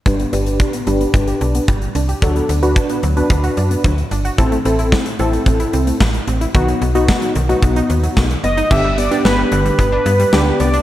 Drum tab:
CC |----------------|----------------|----------------|----------------|
HH |xxxxxxxxxxxxxxxx|xxxxxxxxxxxxxxxx|xxxx-xxxxxxx-xxx|xxxx-xxxxxxx-xxx|
SD |----------------|----------------|----o-------o---|----o-------o---|
BD |o---o---o---o---|o---o---o---o---|o---o---o---o---|o---o---o---o---|

CC |x---------------|
HH |--xx--xxx-xx--xx|
SD |----o-------o---|
BD |o-------o-------|